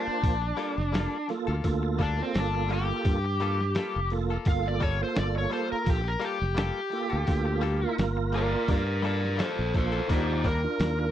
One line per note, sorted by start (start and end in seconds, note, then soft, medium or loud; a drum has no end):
0.00 0.38 A#3 medium
0.00 1.27 D4 medium
0.00 0.38 F4 medium
0.00 0.38 C5 medium
0.07 muted clean electric guitar stroke soft
0.07 muted fingered electric bass stroke soft
0.22 0.51 A#1 medium
0.22 muted clean electric guitar stroke soft
0.22 kick loud
0.22 open hi-hat medium
0.42 muted clean electric guitar stroke soft
0.57 0.77 G3 medium
0.57 0.77 A#3 medium
0.57 0.76 F4 medium
0.57 0.76 A4 medium
0.57 open hi-hat medium
0.77 1.06 F1 medium
0.77 muted clean electric guitar stroke soft
0.77 snare soft
0.92 1.16 G3 medium
0.92 1.16 A#3 medium
0.92 1.17 F4 medium
0.92 1.17 A4 medium
0.92 snare loud
0.92 open hi-hat medium
1.28 1.56 A#3 medium
1.28 1.56 F4 medium
1.28 1.56 A4 loud
1.28 muted clean electric guitar stroke soft
1.28 snare soft
1.28 open hi-hat soft
1.47 1.61 D2 medium
1.47 1.69 A#3 soft
1.47 1.68 F4 medium
1.47 1.68 A4 medium
1.64 2.20 D2 loud
1.64 2.03 A#3 medium
1.64 2.03 F4 medium
1.64 2.03 A4 loud
1.64 kick loud
1.64 open hi-hat medium
1.83 muted clean electric guitar stroke soft
1.99 2.19 G3 medium
1.99 2.19 A#3 medium
1.99 2.20 D4 medium
1.99 2.19 F4 medium
1.99 2.18 A4 medium
1.99 kick medium
1.99 open hi-hat soft
2.18 3.19 A#3 medium
2.18 3.19 F4 medium
2.18 3.20 A4 medium
2.23 2.36 C4 medium
2.34 2.91 G1 medium
2.34 2.71 D4 medium
2.34 snare loud
2.34 open hi-hat medium
2.55 muted clean electric guitar stroke soft
2.69 2.89 G3 medium
2.69 2.90 A#3 medium
2.69 2.90 F4 medium
2.69 2.89 A4 medium
2.69 open hi-hat medium
2.73 4.09 G4 loud
2.90 muted clean electric guitar stroke soft
3.05 3.76 G2 loud
3.05 muted clean electric guitar stroke soft
3.05 kick loud
3.05 open hi-hat medium
3.24 muted clean electric guitar stroke soft
3.40 3.60 G3 medium
3.40 3.60 A#3 medium
3.40 3.60 F4 medium
3.40 3.59 A4 loud
3.40 open hi-hat medium
3.61 snare soft
3.75 3.98 G3 medium
3.75 3.99 A#3 medium
3.75 3.99 F4 medium
3.75 4.00 A4 medium
3.75 snare loud
3.75 open hi-hat medium
3.96 4.36 F1 medium
4.10 4.38 A#3 medium
4.10 4.38 F4 medium
4.10 4.38 A4 loud
4.10 muted clean electric guitar stroke soft
4.10 open hi-hat medium
4.30 4.52 A#3 soft
4.30 4.51 F4 soft
4.30 4.50 A4 medium
4.45 5.02 G1 loud
4.45 4.85 A#3 medium
4.45 4.85 F4 medium
4.45 4.85 A4 medium
4.45 4.66 F5 loud
4.45 kick loud
4.45 open hi-hat medium
4.66 4.82 D5 medium
4.66 muted clean electric guitar stroke soft
4.80 5.00 G3 medium
4.80 5.00 A#3 medium
4.80 4.99 F4 medium
4.80 4.98 A4 medium
4.80 5.01 C#5 medium
4.80 kick medium
4.80 open hi-hat medium
4.99 6.02 A#3 medium
4.99 6.02 F4 medium
4.99 6.02 A4 medium
4.99 5.18 C5 medium
4.99 muted clean electric guitar stroke soft
5.15 5.45 G1 loud
5.15 5.36 D5 medium
5.15 snare loud
5.15 open hi-hat medium
5.35 5.53 C#5 medium
5.35 muted clean electric guitar stroke soft
5.50 5.70 G3 soft
5.50 5.69 A#3 medium
5.50 5.69 F4 medium
5.50 5.68 A4 medium
5.50 5.71 C5 medium
5.50 open hi-hat medium
5.69 5.87 A#4 loud
5.69 muted clean electric guitar stroke soft
5.69 muted fingered electric bass stroke soft
5.85 6.15 A#1 loud
5.85 muted clean electric guitar stroke soft
5.85 kick loud
5.85 open hi-hat medium
5.90 6.07 G4 medium
6.04 6.23 A#4 loud
6.04 muted clean electric guitar stroke soft
6.20 6.40 G3 medium
6.20 6.40 A#3 medium
6.20 6.39 F4 medium
6.20 6.38 A4 medium
6.20 open hi-hat medium
6.24 6.57 G4 medium
6.40 6.70 F1 medium
6.40 muted clean electric guitar stroke soft
6.40 snare soft
6.55 6.79 G3 medium
6.55 6.79 A#3 medium
6.55 6.80 F4 medium
6.55 6.80 A4 medium
6.55 snare loud
6.55 open hi-hat medium
6.59 7.95 G4 loud
6.90 7.19 A#3 medium
6.90 7.19 F4 medium
6.90 7.19 A4 medium
6.90 muted clean electric guitar stroke soft
6.90 open hi-hat soft
7.10 7.25 D2 medium
7.10 7.32 A#3 soft
7.10 7.32 F4 soft
7.10 7.31 A4 soft
7.27 7.84 D2 loud
7.27 7.67 A#3 medium
7.27 7.66 F4 medium
7.27 7.66 A4 medium
7.27 kick loud
7.27 open hi-hat medium
7.46 muted clean electric guitar stroke medium
7.61 7.82 G3 medium
7.61 7.82 A#3 loud
7.61 7.81 F4 medium
7.61 7.80 A4 medium
7.61 open hi-hat medium
7.81 8.83 A#3 medium
7.81 8.83 F4 medium
7.81 8.84 A#4 medium
7.81 muted clean electric guitar stroke medium
7.98 8.54 G1 medium
7.98 snare loud
7.98 open hi-hat medium
8.17 muted clean electric guitar stroke soft
8.32 8.53 G3 medium
8.32 8.53 A#3 medium
8.32 8.52 F4 medium
8.32 8.51 A4 medium
8.32 8.69 A#4 medium
8.32 open hi-hat medium
8.37 8.70 D5 medium
8.52 muted clean electric guitar stroke soft
8.68 9.40 G2 loud
8.68 9.03 A#4 medium
8.68 9.04 D5 medium
8.68 muted clean electric guitar stroke soft
8.68 kick loud
8.68 open hi-hat medium
8.87 muted clean electric guitar stroke soft
9.02 9.23 G3 loud
9.02 9.22 A#3 medium
9.02 9.22 F4 medium
9.02 9.21 A4 medium
9.02 9.38 A#4 medium
9.02 9.39 D5 medium
9.02 open hi-hat medium
9.22 muted clean electric guitar stroke medium
9.22 snare soft
9.36 9.60 G3 medium
9.36 9.61 A#3 medium
9.36 9.62 F4 medium
9.36 9.62 A4 medium
9.36 snare loud
9.36 open hi-hat medium
9.41 9.73 A4 medium
9.41 9.75 C5 medium
9.59 9.99 A#1 medium
9.73 10.01 A#3 medium
9.73 10.02 F4 medium
9.73 10.01 A4 medium
9.73 10.09 A4 medium
9.73 muted clean electric guitar stroke soft
9.73 kick medium
9.73 snare soft
9.73 open hi-hat soft
9.77 10.10 C5 medium
9.92 10.08 A#3 soft
9.92 10.09 F4 soft
9.92 10.09 A4 medium
10.08 10.65 D#2 loud
10.08 10.28 D#3 medium
10.08 10.29 G3 medium
10.08 10.28 A#3 medium
10.08 10.27 D4 medium
10.08 10.43 D#4 medium
10.08 10.49 F4 medium
10.08 10.49 G4 medium
10.08 10.49 D5 medium
10.08 kick loud
10.08 open hi-hat medium
10.12 10.45 C5 medium
10.29 muted clean electric guitar stroke soft
10.44 10.64 D#3 medium
10.44 10.64 G3 medium
10.44 10.63 A#3 medium
10.44 10.62 D4 medium
10.44 11.11 A#4 loud
10.44 kick medium
10.44 open hi-hat medium
10.63 11.11 D4 medium
10.63 11.11 F4 medium
10.63 11.11 A#4 medium
10.63 muted clean electric guitar stroke soft
10.80 11.08 D#2 loud
10.80 snare loud
10.80 open hi-hat medium
10.99 muted clean electric guitar stroke soft